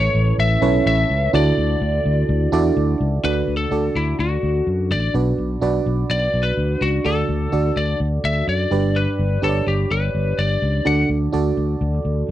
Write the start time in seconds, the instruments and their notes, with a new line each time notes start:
Already playing: fm electric piano A2 C#4 E4 A4 B4 C#5, lead electric guitar C#5
0.15 fretless electric bass A1
0.38 fretless electric bass A1, lead electric guitar E5
0.62 fretless electric bass B1, fm electric piano C#4 E4 A4 B4 C#5
0.86 fretless electric bass A1, lead electric guitar E5
1.10 fretless electric bass C#2
1.33 fretless electric bass D2, fm electric piano D3 D4 E4 F#4 A4 D5, lead electric guitar D5
1.58 fretless electric bass D2
1.81 fretless electric bass D2
2.05 fretless electric bass D2
2.29 fretless electric bass D2
2.52 fretless electric bass E2, fm electric piano D4 E4 F#4 A4 D5
2.77 fretless electric bass D2
3.00 fretless electric bass C#2
3.24 fretless electric bass D2, fm electric piano D3 D4 F#4 A4 D5, lead electric guitar B4
3.48 fretless electric bass D2
3.57 lead electric guitar A4
3.71 fretless electric bass D2, fm electric piano D4 F#4 A4 D5
3.95 fretless electric bass D2, lead electric guitar E4
4.19 fretless electric bass D2, lead electric guitar F#4
4.43 fretless electric bass D2
4.67 fretless electric bass F#2
4.91 fretless electric bass A1, lead electric guitar D5
5.14 fretless electric bass B1, fm electric piano B2 D4 F#4 B4 D5
5.38 fretless electric bass B1
5.61 fretless electric bass B1, fm electric piano D4 F#4 B4 D5
5.86 fretless electric bass B1
6.10 fretless electric bass B1, lead electric guitar D5
6.34 fretless electric bass B1
6.43 lead electric guitar B4
6.57 fretless electric bass D2
6.81 fretless electric bass C#2, lead electric guitar F#4
7.04 fretless electric bass D2, fm electric piano D3 D4 F#4 A4 D5, lead electric guitar A4
7.29 fretless electric bass D2
7.52 fretless electric bass D2, fm electric piano D4 F#4 A4 D5
7.76 fretless electric bass D2, lead electric guitar D5
8.00 fretless electric bass D2
8.24 fretless electric bass D2, lead electric guitar E5
8.48 fretless electric bass F#2, lead electric guitar D5
8.71 fretless electric bass G1, fm electric piano G2 D4 G4 B4 D5
8.96 lead electric guitar B4
9.19 fretless electric bass G1
9.42 fretless electric bass G1, fm electric piano D4 G4 B4 C#5, lead electric guitar A4
9.49 fm electric piano D5
9.67 fretless electric bass G1, lead electric guitar G4
9.91 fretless electric bass G1, lead electric guitar B4
10.15 fretless electric bass G1
10.39 fretless electric bass G1, lead electric guitar D5
10.62 fretless electric bass C#2
10.85 fretless electric bass D2, fm electric piano D3 D4 F#4 A4 D5, lead electric guitar F#5
11.09 fretless electric bass D2
11.32 fretless electric bass D2, fm electric piano D4 F#4 A4 D5
11.57 fretless electric bass D2
11.81 fretless electric bass D2
12.05 fretless electric bass D2